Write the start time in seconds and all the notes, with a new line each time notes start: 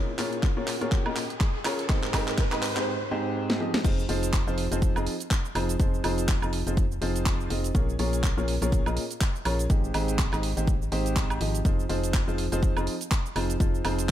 Already playing: A#2 C#4 F4 G#4 A#4 C#5, riser
0.19 A#2 C#4 F4 G#4 A#4 C#5, clap, open hi-hat
0.33 closed hi-hat
0.43 kick, clap, closed hi-hat
0.57 A#2 C#4 F4 G#4 A#4 C#5
0.67 clap, open hi-hat
0.81 A#2 C#4 F4 G#4 A#4 C#5, closed hi-hat
0.92 kick, clap, closed hi-hat
1.06 A#2 C#4 F4 G#4 A#4 D#5, high woodblock
1.16 clap, open hi-hat
1.30 closed hi-hat
1.41 kick, clap, closed hi-hat
1.65 C#4 F4 G#4 A#4 C#5, clap, open hi-hat, high woodblock
1.79 closed hi-hat
1.89 G#2 C4 D#4 G4 G#4 C5, kick, clap, closed hi-hat
2.03 clap
2.14 G#2 C4 D#4 G4 G#4 C5, kick, clap, open hi-hat, high woodblock
2.28 clap, closed hi-hat
2.38 kick, clap, closed hi-hat
2.52 G#2 C4 D#4 G4 G#4 D#5, clap, high woodblock
2.63 clap, open hi-hat
2.77 G#2 C4 D#4 G4 G#4 C5, clap, closed hi-hat
3.11 G#2 C4 D#4 G4 G#4 C5
3.50 snare
3.60 F3 C4 D#4 G4 G#4 D#5
3.74 snare
3.84 F1 F3 C4 D#4 F4 G#4 C5, kick, closed hi-hat, crash, shaker
3.99 shaker
4.09 F1 F3 C4 D#4 F4 G#4 C5, open hi-hat
4.23 closed hi-hat, shaker
4.33 kick, clap, closed hi-hat, shaker
4.47 F1 F3 C4 D#4 F4 G#4 C5, shaker
4.58 open hi-hat
4.71 F1 F3 C4 D#4 F4 G#4 C5, closed hi-hat, shaker
4.82 kick, closed hi-hat, shaker
4.96 F1 F3 C4 D#4 F4 G#4 D#5, high woodblock, shaker
5.07 open hi-hat
5.20 closed hi-hat, shaker
5.31 kick, clap, closed hi-hat, shaker
5.45 shaker
5.55 F1 F3 C4 D#4 F4 G#4 C5, open hi-hat, high woodblock
5.69 closed hi-hat, shaker
5.80 F1 F3 C4 D#4 F4 G#4 C5, kick, closed hi-hat, shaker
5.94 shaker
6.04 F1 F3 C4 D#4 F4 G#4 C5, open hi-hat, high woodblock
6.18 closed hi-hat, shaker
6.28 kick, clap, closed hi-hat, shaker
6.42 F1 F3 C4 D#4 F4 G#4 D#5, high woodblock, shaker
6.53 open hi-hat
6.67 F1 F3 C4 D#4 F4 G#4 C5, closed hi-hat, shaker
6.77 kick, closed hi-hat, shaker
6.92 shaker
7.02 F1 F3 C4 D#4 F4 G#4 C5, open hi-hat
7.16 closed hi-hat, shaker
7.26 kick, clap, closed hi-hat, shaker
7.41 shaker
7.50 F1 C4 D#4 F4 G#4 D#5, open hi-hat
7.64 closed hi-hat, shaker
7.75 A#1 A#2 C#4 F4 G#4 A#4 C#5, kick, closed hi-hat, shaker
7.89 shaker
7.99 A#1 A#2 C#4 F4 G#4 A#4 C#5, open hi-hat
8.13 closed hi-hat, shaker
8.24 kick, clap, closed hi-hat, shaker
8.37 A#1 A#2 C#4 F4 G#4 A#4 C#5, shaker
8.48 open hi-hat
8.62 A#1 A#2 C#4 F4 G#4 A#4 C#5, closed hi-hat, shaker
8.72 kick, closed hi-hat, shaker
8.86 A#1 A#2 C#4 F4 G#4 A#4 D#5, high woodblock, shaker
8.97 open hi-hat
9.11 closed hi-hat, shaker
9.21 kick, clap, closed hi-hat, shaker
9.36 shaker
9.45 A#1 C#4 F4 G#4 A#4 C#5, open hi-hat, high woodblock
9.59 closed hi-hat, shaker
9.70 G#1 G#2 C4 D#4 G4 G#4 C5, kick, closed hi-hat, shaker
9.84 shaker
9.94 G#1 G#2 C4 D#4 G4 G#4 C5, open hi-hat, high woodblock
10.08 closed hi-hat, shaker
10.19 kick, clap, closed hi-hat, shaker
10.32 G#1 G#2 C4 D#4 G4 G#4 D#5, clap, high woodblock, shaker
10.43 open hi-hat
10.57 G#1 G#2 C4 D#4 G4 G#4 C5, closed hi-hat, shaker
10.67 kick, closed hi-hat, shaker
10.82 shaker
10.92 G#1 G#2 C4 D#4 G4 G#4 C5, open hi-hat
11.06 closed hi-hat, shaker
11.16 kick, clap, closed hi-hat, shaker
11.30 high woodblock, shaker
11.41 G#1 F3 C4 D#4 G4 G#4 D#5, open hi-hat
11.55 closed hi-hat, shaker
11.65 F1 F3 C4 D#4 F4 G#4 C5, kick, closed hi-hat, shaker
11.80 shaker
11.89 F1 F3 C4 D#4 F4 G#4 C5, open hi-hat
12.03 closed hi-hat, shaker
12.14 kick, clap, closed hi-hat, shaker
12.28 F1 F3 C4 D#4 F4 G#4 C5, shaker
12.38 open hi-hat
12.52 F1 F3 C4 D#4 F4 G#4 C5, closed hi-hat, shaker
12.63 kick, closed hi-hat, shaker
12.76 F1 F3 C4 D#4 F4 G#4 D#5, high woodblock, shaker
12.87 open hi-hat
13.01 closed hi-hat, shaker
13.11 kick, clap, closed hi-hat, shaker
13.26 shaker
13.36 F1 F3 C4 D#4 F4 G#4 C5, open hi-hat, high woodblock
13.50 closed hi-hat, shaker
13.60 F1 F3 C4 D#4 F4 G#4 C5, kick, closed hi-hat, shaker
13.75 shaker
13.84 F1 F3 C4 D#4 F4 G#4 C5, open hi-hat, high woodblock
13.99 closed hi-hat, shaker